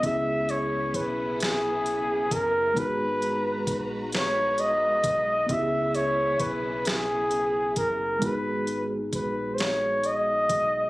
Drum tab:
HH |xxxxxx|xxxxxx|xxxxxx|xxxxxx|
SD |---o--|---o--|---o--|---o--|
BD |o-o--o|o-o--o|o-o--o|o-o--o|